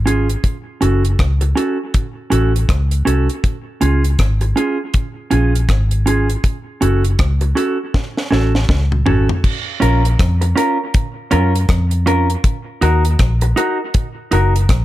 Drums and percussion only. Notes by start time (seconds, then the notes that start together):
0.07 closed hi-hat
0.29 closed hi-hat
0.44 kick, closed hi-hat
0.82 closed hi-hat
1.05 closed hi-hat
1.19 kick, cross-stick, closed hi-hat
1.41 closed hi-hat
1.57 closed hi-hat
1.94 kick, closed hi-hat
2.32 closed hi-hat
2.56 closed hi-hat
2.69 kick, cross-stick, closed hi-hat
2.91 closed hi-hat
3.07 closed hi-hat
3.29 closed hi-hat
3.44 kick, closed hi-hat
3.81 closed hi-hat
4.04 closed hi-hat
4.19 kick, cross-stick, closed hi-hat
4.41 closed hi-hat
4.57 closed hi-hat
4.94 kick, closed hi-hat
5.31 closed hi-hat
5.55 closed hi-hat
5.69 kick, cross-stick, closed hi-hat
5.91 closed hi-hat
6.07 closed hi-hat
6.30 closed hi-hat
6.44 kick, closed hi-hat
6.82 closed hi-hat
7.04 closed hi-hat
7.19 kick, cross-stick, closed hi-hat
7.41 closed hi-hat
7.57 closed hi-hat
7.94 kick, snare
8.17 snare
8.32 snare
8.55 snare
8.69 kick, snare
8.92 mid tom
9.06 floor tom
9.29 floor tom
9.44 kick, crash
9.82 closed hi-hat
10.05 closed hi-hat
10.19 kick, cross-stick, closed hi-hat
10.42 closed hi-hat
10.57 closed hi-hat
10.94 kick, closed hi-hat
11.31 closed hi-hat
11.55 closed hi-hat
11.69 kick, cross-stick, closed hi-hat
11.91 closed hi-hat
12.07 closed hi-hat
12.30 closed hi-hat
12.44 kick, closed hi-hat
12.82 closed hi-hat
13.05 closed hi-hat
13.19 kick, cross-stick, closed hi-hat
13.41 closed hi-hat
13.57 closed hi-hat
13.94 kick, closed hi-hat
14.32 closed hi-hat
14.56 closed hi-hat
14.69 kick, cross-stick, closed hi-hat